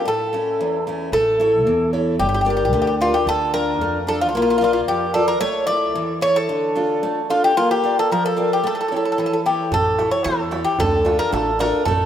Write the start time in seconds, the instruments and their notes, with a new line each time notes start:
0.05 steel-string acoustic guitar A2, bouzouki A4
0.33 steel-string acoustic guitar A3 C#4 E4
0.61 steel-string acoustic guitar E2
0.87 steel-string acoustic guitar A3 C#4 E4
1.12 upright bass A1, steel-string acoustic guitar A3, bouzouki A4
1.40 steel-string acoustic guitar E4 A4 C#5
1.66 upright bass E2, steel-string acoustic guitar E3
1.93 steel-string acoustic guitar E4 A4 C#5
2.19 upright bass G1, steel-string acoustic guitar G3, bouzouki G4
2.29 bouzouki G4
2.34 bouzouki G4
2.41 bouzouki G4, steel-string acoustic guitar G4
2.46 steel-string acoustic guitar A#4 D5
2.50 bouzouki G4
2.57 bouzouki G4
2.65 bouzouki G4
2.73 upright bass D2, steel-string acoustic guitar D3, bouzouki G4
2.82 bouzouki G4
2.87 bouzouki G4
3.01 bouzouki F4, steel-string acoustic guitar G4 A#4 D5
3.14 bouzouki G4
3.26 upright bass D2, steel-string acoustic guitar D3, bouzouki A4
3.54 steel-string acoustic guitar D4 F4, bouzouki A#4
3.80 upright bass F2, steel-string acoustic guitar A3
4.07 steel-string acoustic guitar D4 F4 A4, bouzouki A4
4.21 bouzouki F4
4.29 bouzouki F4
4.34 upright bass A#1, steel-string acoustic guitar A#3, bouzouki F4
4.42 bouzouki F4
4.50 bouzouki F4
4.58 bouzouki F4, steel-string acoustic guitar F4 A#4
4.62 bouzouki F4, steel-string acoustic guitar D5
4.73 bouzouki F4
4.87 upright bass F2, steel-string acoustic guitar F3, bouzouki G4
5.14 steel-string acoustic guitar F4 A#4 D5, bouzouki A4
5.28 bouzouki A#4
5.40 upright bass A1, steel-string acoustic guitar A3, bouzouki C#5
5.67 steel-string acoustic guitar E4 A4 E5, bouzouki D5
5.95 upright bass E2, steel-string acoustic guitar E3
6.21 steel-string acoustic guitar E4 A4 C#5, bouzouki C#5
6.36 bouzouki A4
6.49 upright bass D2, steel-string acoustic guitar D3
6.75 steel-string acoustic guitar D4 F4 A4
7.03 upright bass A1, steel-string acoustic guitar A3
7.30 steel-string acoustic guitar D4 F4 A4, bouzouki F4
7.44 bouzouki G4
7.56 upright bass A#1, steel-string acoustic guitar A#3, bouzouki F4
7.71 bouzouki G4
7.84 steel-string acoustic guitar F4 A#4 D5
7.99 bouzouki A4
8.11 upright bass F2, steel-string acoustic guitar F3, bouzouki A#4
8.26 bouzouki A4
8.37 steel-string acoustic guitar F4 A#4 D5
8.53 bouzouki G4
8.64 upright bass A1, steel-string acoustic guitar A3, bouzouki A4
8.75 bouzouki A4
8.81 bouzouki A4
8.88 bouzouki A4, steel-string acoustic guitar A4 C#5
8.92 steel-string acoustic guitar E4
8.96 bouzouki A4
9.05 bouzouki A4
9.12 bouzouki A4
9.18 upright bass E2, steel-string acoustic guitar E3, bouzouki A4
9.26 bouzouki A4
9.33 bouzouki A4
9.46 steel-string acoustic guitar E4 A4 C#5, bouzouki G4
9.71 upright bass A1, steel-string acoustic guitar A3, bouzouki A4, darbuka dum
9.86 darbuka tek
9.98 steel-string acoustic guitar E4 A4 C#5, darbuka tek
10.11 bouzouki C#5, darbuka tek
10.24 upright bass E2, steel-string acoustic guitar E3, bouzouki A4, darbuka tek
10.51 steel-string acoustic guitar E4 A4 C#5, darbuka tek
10.64 bouzouki G4, darbuka tek
10.79 upright bass D2, steel-string acoustic guitar D3, bouzouki A4, darbuka dum
10.93 darbuka tek
11.05 steel-string acoustic guitar D4 F4 A4, darbuka tek
11.19 bouzouki A#4, darbuka tek
11.32 upright bass A1, steel-string acoustic guitar A3, bouzouki A4, darbuka tek
11.59 steel-string acoustic guitar D4 F4 A4, bouzouki A#4, darbuka tek
11.73 darbuka tek
11.85 upright bass A1, steel-string acoustic guitar A3, bouzouki A4, darbuka dum
12.00 darbuka tek